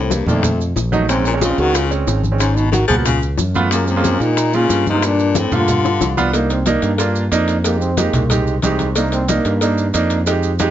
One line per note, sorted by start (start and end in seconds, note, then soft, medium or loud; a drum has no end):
0.00 0.21 C2 medium
0.00 0.14 A2 medium
0.00 0.13 C4 medium
0.10 0.27 G2 medium
0.10 0.27 A#3 medium
0.10 high bongo medium
0.10 high conga loud
0.10 maracas medium
0.26 0.72 F2 loud
0.26 0.64 F2 medium
0.26 0.44 D#3 medium
0.26 0.63 A3 medium
0.26 0.44 A#3 medium
0.26 0.44 D4 medium
0.26 high conga soft
0.26 low conga medium
0.26 maracas soft
0.43 high bongo medium
0.43 high conga soft
0.43 low conga medium
0.43 maracas medium
0.60 high bongo soft
0.60 high conga soft
0.60 maracas soft
0.76 1.52 A#1 loud
0.76 high bongo soft
0.76 low bongo medium
0.76 high conga medium
0.76 maracas medium
0.92 1.04 F#3 medium
0.92 1.04 A3 medium
0.92 1.04 D#4 loud
0.92 high bongo soft
0.92 high conga medium
0.92 maracas soft
1.08 1.25 G#2 medium
1.08 1.26 G#3 medium
1.08 1.26 C4 medium
1.08 1.24 C4 medium
1.08 1.26 C#4 medium
1.08 high bongo medium
1.08 high conga soft
1.08 maracas medium
1.25 1.34 A#2 medium
1.25 1.34 C#4 medium
1.25 high bongo soft
1.25 high conga soft
1.25 maracas soft
1.33 1.45 G#3 medium
1.33 1.45 C4 medium
1.33 1.45 C#4 medium
1.41 1.61 C#3 medium
1.41 1.62 F4 loud
1.41 high bongo medium
1.41 high conga loud
1.41 maracas medium
1.49 1.78 G#3 medium
1.49 1.79 C4 medium
1.49 1.79 C#4 medium
1.58 2.04 C#2 loud
1.58 1.78 D#3 medium
1.58 1.78 F#4 loud
1.58 high conga soft
1.58 maracas soft
1.75 1.92 C#3 medium
1.75 1.92 F4 medium
1.75 high bongo medium
1.75 high conga soft
1.75 maracas medium
1.90 2.19 G#3 medium
1.90 2.19 C4 medium
1.90 2.20 C#4 medium
1.90 high bongo soft
1.90 high conga soft
1.90 maracas soft
2.07 2.84 G#1 medium
2.07 high bongo soft
2.07 low bongo medium
2.07 high conga soft
2.07 maracas medium
2.23 high bongo soft
2.23 high conga medium
2.23 maracas soft
2.31 2.40 G#3 medium
2.31 2.40 C4 medium
2.31 2.40 C#4 medium
2.40 2.58 G#2 medium
2.40 2.58 C#4 medium
2.40 high bongo medium
2.40 maracas medium
2.56 2.71 B2 medium
2.56 2.71 D#4 medium
2.56 high bongo soft
2.56 high conga soft
2.56 maracas soft
2.72 2.87 D#3 medium
2.72 2.88 F#4 medium
2.72 high bongo medium
2.72 high conga loud
2.72 maracas medium
2.88 3.35 C#2 loud
2.88 2.96 F3 medium
2.88 3.06 A#3 medium
2.88 3.06 B3 medium
2.88 3.06 F#4 medium
2.88 2.96 G#4 loud
2.88 high conga soft
2.88 low conga medium
2.88 maracas soft
3.05 3.21 C#3 medium
3.05 3.21 F4 medium
3.05 high bongo medium
3.05 high conga soft
3.05 low conga medium
3.05 maracas medium
3.22 high bongo soft
3.22 high conga soft
3.22 maracas soft
3.38 4.15 F#2 medium
3.38 high bongo soft
3.38 low bongo medium
3.38 high conga medium
3.38 maracas medium
3.54 3.67 A3 medium
3.54 3.67 B3 medium
3.54 3.67 F4 loud
3.54 high bongo soft
3.54 high conga medium
3.54 maracas soft
3.71 3.87 F#2 medium
3.71 3.89 G#3 medium
3.71 3.89 A#3 medium
3.71 3.87 A#3 loud
3.71 3.89 F4 medium
3.71 high bongo medium
3.71 high conga soft
3.71 maracas medium
3.87 4.24 F#2 medium
3.87 4.23 C4 loud
3.87 high bongo soft
3.87 high conga soft
3.87 maracas soft
3.96 4.08 G#3 medium
3.96 4.08 A#3 medium
3.96 4.08 F4 medium
4.04 high bongo medium
4.04 high conga loud
4.04 maracas medium
4.13 4.42 G#3 medium
4.13 4.42 A#3 medium
4.13 4.42 F4 medium
4.20 4.66 A#2 loud
4.20 4.57 A#2 medium
4.20 4.57 D#4 loud
4.20 high conga soft
4.20 maracas soft
4.37 high bongo medium
4.37 high conga soft
4.37 maracas medium
4.53 4.87 C#3 medium
4.53 4.83 G#3 medium
4.53 4.83 A#3 medium
4.53 4.83 F4 medium
4.53 4.87 F4 loud
4.53 high bongo soft
4.53 high conga soft
4.53 maracas soft
4.69 5.46 G2 medium
4.69 high bongo soft
4.69 low bongo medium
4.69 high conga soft
4.69 maracas medium
4.86 5.07 C3 medium
4.86 5.07 D#4 loud
4.86 high bongo soft
4.86 high conga medium
4.86 maracas soft
4.95 5.03 G#3 medium
4.95 5.03 A#3 medium
4.95 5.03 F4 medium
5.03 5.40 A#2 medium
5.03 5.39 D4 loud
5.03 high bongo medium
5.03 maracas medium
5.19 high bongo soft
5.19 high conga soft
5.19 maracas soft
5.35 5.56 A2 medium
5.35 5.55 C4 medium
5.35 high bongo medium
5.35 high conga loud
5.35 maracas medium
5.52 5.98 G2 medium
5.52 6.19 D3 medium
5.52 5.68 A3 medium
5.52 5.68 A#3 medium
5.52 5.69 F4 medium
5.52 6.18 F4 loud
5.52 high conga soft
5.52 low conga medium
5.52 maracas soft
5.68 high bongo medium
5.68 high conga soft
5.68 low conga medium
5.68 maracas medium
5.85 low bongo loud
5.85 high conga soft
5.85 maracas soft
6.01 6.77 C2 medium
6.01 low bongo loud
6.01 high conga medium
6.01 maracas medium
6.17 6.29 B3 medium
6.17 6.29 D4 medium
6.17 6.29 F4 loud
6.17 low bongo medium
6.17 high conga medium
6.17 maracas soft
6.34 6.57 A#3 medium
6.34 6.52 A#3 medium
6.34 6.57 D4 medium
6.34 6.57 D#4 medium
6.34 cowbell loud
6.34 maracas medium
6.50 6.69 C4 medium
6.50 cowbell medium
6.50 high conga soft
6.50 maracas soft
6.66 6.90 A#3 medium
6.66 7.16 A#3 medium
6.66 6.90 D4 medium
6.66 6.90 D#4 loud
6.66 cowbell medium
6.66 high conga loud
6.66 maracas medium
6.82 7.28 G2 loud
6.82 cowbell medium
6.82 high conga soft
6.82 maracas soft
6.98 7.22 A#3 medium
6.98 7.22 D4 medium
6.98 7.23 F4 medium
6.98 cowbell loud
6.98 high conga soft
6.98 maracas medium
7.16 high conga soft
7.16 maracas soft
7.32 8.08 F2 medium
7.32 7.55 A#3 medium
7.32 7.55 D4 medium
7.32 7.55 D#4 loud
7.32 cowbell medium
7.32 high conga soft
7.32 maracas medium
7.48 cowbell medium
7.48 maracas soft
7.64 7.88 G#3 medium
7.64 7.80 A#3 medium
7.64 7.88 D#4 medium
7.64 7.88 G4 medium
7.64 cowbell loud
7.64 high conga soft
7.64 maracas medium
7.80 7.99 C4 medium
7.80 high conga soft
7.80 maracas soft
7.97 8.20 G#3 medium
7.97 8.47 A#3 medium
7.97 8.21 D#4 medium
7.97 8.21 G4 medium
7.97 cowbell medium
7.97 high conga loud
7.97 maracas medium
8.13 8.60 C2 loud
8.13 cowbell medium
8.13 high conga soft
8.13 low conga loud
8.13 maracas soft
8.30 8.53 G#3 medium
8.30 8.53 D#4 medium
8.30 8.54 G4 medium
8.30 cowbell loud
8.30 high conga soft
8.30 low conga medium
8.30 maracas medium
8.47 high conga soft
8.47 maracas soft
8.62 9.40 C2 loud
8.62 8.86 G#3 medium
8.62 8.86 D#4 medium
8.62 8.86 G4 loud
8.62 cowbell medium
8.62 high conga medium
8.62 maracas medium
8.79 cowbell medium
8.79 high conga medium
8.79 maracas soft
8.96 9.11 A#3 medium
8.96 9.19 A#3 medium
8.96 9.19 D4 medium
8.96 9.19 D#4 medium
8.96 cowbell loud
8.96 maracas medium
9.12 9.31 C4 medium
9.12 cowbell medium
9.12 high conga soft
9.12 maracas soft
9.28 9.51 A#3 medium
9.28 9.78 A#3 medium
9.28 9.52 D4 medium
9.28 9.52 D#4 loud
9.28 cowbell medium
9.28 high conga loud
9.28 maracas medium
9.45 9.91 G2 loud
9.45 cowbell medium
9.45 high conga soft
9.45 maracas soft
9.61 9.84 A#3 medium
9.61 9.84 D4 medium
9.61 9.85 D#4 medium
9.61 cowbell loud
9.61 high conga soft
9.61 maracas medium
9.78 high conga soft
9.78 maracas soft
9.94 10.71 F2 loud
9.94 10.17 A#3 medium
9.94 10.17 D4 medium
9.94 10.17 D#4 loud
9.94 cowbell medium
9.94 high conga soft
9.94 maracas medium
10.10 cowbell medium
10.10 maracas soft
10.26 10.50 G#3 medium
10.26 10.50 D#4 medium
10.26 10.50 G4 loud
10.26 cowbell loud
10.26 high conga soft
10.26 maracas medium
10.43 high conga soft
10.43 maracas soft
10.59 10.71 G#3 loud
10.59 10.71 D#4 medium
10.59 10.71 G4 loud
10.59 cowbell medium
10.59 high conga medium
10.59 maracas medium